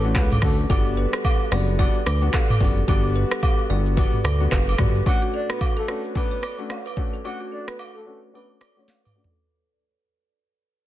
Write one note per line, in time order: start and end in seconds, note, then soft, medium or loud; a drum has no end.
0.00 0.17 A1 loud
0.00 0.18 A3 medium
0.00 0.19 C#4 medium
0.00 0.19 D4 medium
0.00 shaker medium
0.04 0.19 F#4 medium
0.15 0.39 C#2 loud
0.15 0.32 A4 medium
0.15 0.29 B4 medium
0.15 kick medium
0.15 cross-stick loud
0.15 clap medium
0.15 low woodblock medium
0.15 shaker medium
0.30 mid tom loud
0.30 high agogo medium
0.30 shaker medium
0.42 0.66 D2 medium
0.42 0.61 A3 medium
0.42 0.61 C#4 medium
0.42 0.61 D4 medium
0.42 0.61 F#4 medium
0.42 0.57 A4 medium
0.42 kick loud
0.42 cross-stick loud
0.42 open hi-hat medium
0.42 shaker medium
0.59 shaker medium
0.70 1.07 G1 loud
0.70 1.46 G3 medium
0.70 1.46 B3 medium
0.70 1.46 D4 medium
0.70 1.46 F#4 loud
0.70 0.79 A4 medium
0.70 kick loud
0.70 high agogo medium
0.70 shaker medium
0.85 shaker medium
0.96 1.07 B4 medium
0.96 shaker medium
1.13 1.20 A4 medium
1.13 cross-stick loud
1.13 shaker medium
1.24 kick medium
1.24 high agogo medium
1.24 low woodblock medium
1.24 shaker medium
1.40 shaker medium
1.51 1.89 F#1 medium
1.51 1.77 G3 medium
1.51 1.77 B3 medium
1.51 1.77 D4 medium
1.51 1.77 F#4 medium
1.51 1.61 D5 medium
1.51 cross-stick loud
1.51 open hi-hat medium
1.68 shaker medium
1.79 1.97 G3 medium
1.79 1.97 B3 medium
1.79 1.97 D4 medium
1.79 1.97 F#4 loud
1.79 1.89 D5 medium
1.79 kick loud
1.79 high agogo medium
1.79 shaker medium
1.94 shaker medium
2.06 2.30 D2 medium
2.06 2.16 B4 medium
2.06 cross-stick loud
2.06 high agogo medium
2.21 2.37 G3 medium
2.21 2.37 B3 medium
2.21 2.37 D4 medium
2.21 2.37 F#4 medium
2.21 shaker medium
2.33 2.50 A4 medium
2.33 kick loud
2.33 cross-stick loud
2.33 clap loud
2.33 low woodblock medium
2.33 shaker medium
2.49 mid tom loud
2.49 high agogo medium
2.49 shaker medium
2.60 2.84 F#1 medium
2.60 2.79 G3 medium
2.60 2.79 B3 medium
2.60 2.79 D4 medium
2.60 2.79 F#4 medium
2.60 kick loud
2.60 open hi-hat medium
2.60 shaker medium
2.77 shaker medium
2.88 3.25 G1 loud
2.88 3.64 G3 medium
2.88 3.64 B3 medium
2.88 3.64 D4 medium
2.88 3.64 F#4 loud
2.88 2.98 G4 medium
2.88 kick loud
2.88 high agogo medium
2.88 shaker medium
3.03 shaker medium
3.14 3.25 B4 medium
3.14 shaker medium
3.31 3.38 A4 medium
3.31 cross-stick loud
3.31 shaker medium
3.43 kick medium
3.43 high agogo medium
3.43 low woodblock medium
3.43 shaker medium
3.58 shaker medium
3.70 4.07 G1 medium
3.70 3.95 G3 medium
3.70 3.95 B3 medium
3.70 3.95 D4 medium
3.70 3.95 F#4 medium
3.70 3.79 D5 medium
3.70 shaker medium
3.86 shaker medium
3.97 4.15 G3 loud
3.97 4.15 B3 medium
3.97 4.15 D4 medium
3.97 4.15 F#4 loud
3.97 4.07 B4 medium
3.97 kick loud
3.97 high agogo medium
3.97 shaker medium
4.13 mid tom medium
4.13 shaker medium
4.24 4.48 D2 medium
4.24 4.34 A4 medium
4.24 cross-stick loud
4.24 high agogo medium
4.24 shaker medium
4.40 4.55 G3 medium
4.40 4.55 B3 medium
4.40 4.55 D4 medium
4.40 4.55 F#4 medium
4.40 shaker medium
4.52 4.75 F#1 loud
4.52 4.68 B4 medium
4.52 kick loud
4.52 cross-stick medium
4.52 clap loud
4.52 low woodblock medium
4.52 shaker medium
4.67 high agogo medium
4.67 shaker medium
4.78 5.02 G1 medium
4.78 4.97 G3 medium
4.78 4.97 B3 medium
4.78 4.97 D4 medium
4.78 4.97 F#4 medium
4.78 kick loud
4.78 cross-stick loud
4.78 mid tom loud
4.78 shaker medium
4.95 shaker medium
5.06 5.82 A3 medium
5.06 5.82 C#4 medium
5.06 5.83 D4 medium
5.06 5.83 F#4 loud
5.06 5.20 F#5 loud
5.06 kick loud
5.06 high agogo medium
5.06 shaker medium
5.21 5.29 F#4 medium
5.21 shaker medium
5.33 5.43 A4 medium
5.33 5.48 D5 medium
5.33 shaker medium
5.50 5.60 B4 medium
5.50 cross-stick loud
5.50 shaker medium
5.61 kick medium
5.61 high agogo medium
5.61 low woodblock medium
5.61 shaker medium
5.76 5.84 A4 medium
5.76 5.87 A4 medium
5.76 shaker medium
5.88 6.13 A3 medium
5.88 6.13 C#4 medium
5.88 6.13 D4 medium
5.88 6.14 F#4 medium
5.88 6.02 A4 medium
5.88 5.98 B4 medium
5.88 cross-stick medium
6.04 shaker medium
6.15 6.33 A3 medium
6.15 6.33 C#4 medium
6.15 6.34 D4 medium
6.15 6.34 F#4 medium
6.15 6.56 B4 loud
6.15 kick medium
6.15 high agogo medium
6.15 shaker medium
6.31 6.38 C#5 medium
6.31 shaker medium
6.42 6.52 D5 medium
6.42 cross-stick medium
6.42 high agogo medium
6.42 shaker medium
6.58 6.73 A3 medium
6.58 6.73 C#4 medium
6.58 6.73 D4 medium
6.58 6.73 F#4 medium
6.58 shaker medium
6.70 cross-stick medium
6.70 low woodblock medium
6.70 shaker medium
6.85 6.93 B4 medium
6.85 high agogo medium
6.85 shaker medium
6.97 7.15 A3 medium
6.97 7.15 C#4 medium
6.97 7.15 D4 medium
6.97 7.16 F#4 medium
6.97 kick loud
6.97 shaker medium
7.13 7.20 A4 medium
7.13 shaker medium
7.24 8.01 A3 medium
7.24 8.01 C#4 medium
7.24 8.01 D4 medium
7.24 8.01 F#4 loud
7.24 7.38 F#5 loud
7.24 high agogo medium
7.40 7.47 F#4 medium
7.52 7.61 A4 medium
7.52 7.66 D5 medium
7.68 7.78 B4 medium
7.68 cross-stick loud
7.79 high agogo medium
7.79 low woodblock medium
7.95 8.02 A4 medium
7.95 8.05 A4 medium
8.06 8.31 A3 medium
8.06 8.32 C#4 medium
8.06 8.32 D4 medium
8.06 8.32 F#4 medium
8.06 8.20 A4 medium
8.06 8.16 B4 medium
8.33 8.52 A3 medium
8.33 8.52 C#4 medium
8.33 8.52 D4 medium
8.33 8.52 F#4 loud
8.33 8.48 B4 medium
8.33 high agogo medium
8.50 8.56 C#5 medium
8.61 8.70 D5 medium
8.61 cross-stick medium
8.61 high agogo medium
8.76 8.91 A3 medium
8.76 8.91 C#4 medium
8.76 8.91 D4 medium
8.76 8.92 F#4 medium
8.76 8.87 C#5 medium
8.88 snare medium
8.88 low woodblock medium
9.04 9.11 B4 medium
9.04 mid tom medium
9.04 high agogo medium
9.15 9.33 A3 medium
9.15 9.33 C#4 medium
9.15 9.34 D4 medium
9.15 9.34 F#4 medium
9.15 9.29 D5 medium
9.24 floor tom medium
9.31 9.38 A4 medium